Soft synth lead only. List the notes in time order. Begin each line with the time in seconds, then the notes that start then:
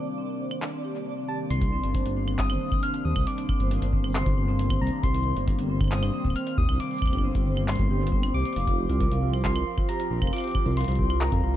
1.28 A5
1.50 C6
2.39 D#6
2.83 F6
3.05 D#6
3.27 D6
4.15 C6
4.81 A#5
5.04 C6
5.92 D#6
6.36 F6
6.58 D#6
6.80 D6
7.68 C6
8.34 D6
9.45 C6
9.89 A#5
10.33 D6
10.77 C6
11.21 A#5